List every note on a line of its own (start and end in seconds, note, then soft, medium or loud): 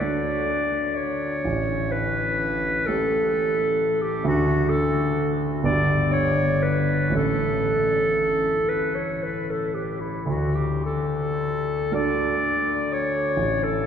0.00 1.47 D2 soft
0.00 1.40 A3 soft
0.00 1.41 D4 soft
0.00 1.40 F#4 soft
0.00 0.93 D5 medium
0.95 1.93 C#5 medium
1.45 2.84 A1 soft
1.92 2.88 B4 medium
2.86 4.22 A3 soft
2.86 4.22 C#4 soft
2.86 4.22 G4 soft
2.86 4.03 A4 medium
4.01 4.25 G4 medium
4.24 5.59 D2 soft
4.24 5.59 A3 soft
4.24 5.60 D4 soft
4.24 5.60 F#4 soft
4.24 4.71 F#4 medium
4.69 5.36 A4 medium
5.63 7.10 G1 soft
5.63 7.10 B3 soft
5.63 7.10 D4 soft
5.63 7.11 G4 soft
5.63 6.13 D5 medium
6.12 6.64 C#5 medium
6.63 7.14 B4 medium
7.09 10.20 A1 soft
7.09 10.21 A3 soft
7.09 10.21 C#4 soft
7.14 10.22 E4 soft
7.14 8.70 A4 medium
8.69 8.96 B4 medium
8.95 9.24 C#5 soft
9.23 9.51 B4 medium
9.50 9.76 A4 soft
9.74 10.02 G4 soft
10.00 10.31 E4 soft
10.26 11.88 D2 soft
10.26 10.56 F#4 medium
10.55 10.82 G4 medium
10.85 11.95 A4 medium
11.91 13.34 A3 soft
11.91 13.34 D4 soft
11.91 13.34 F#4 soft
11.91 12.94 D5 medium
12.92 13.65 C#5 medium
13.37 13.86 A1 soft
13.63 13.86 A4 medium